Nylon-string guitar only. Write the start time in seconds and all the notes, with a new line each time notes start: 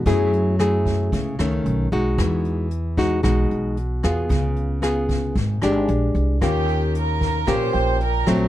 0.06 F#3 A3 E4 G#4
0.60 A3 E4 G#4
1.13 C#3
1.40 D#3 A3 C#4
1.92 G#3 D#4 F#4
2.18 E3
2.98 G#3 D#4 F#4
3.23 B2 G#3 D#4 F#4
4.04 B3 F4 G#4
4.29 C#3
4.82 B3 F4 G#4
5.36 G#2
5.63 G#3 D4 G4
6.42 D#3 A#3 C#4 G4
7.47 A#2 A#3 C#4 G4
8.27 F#3 A3 C4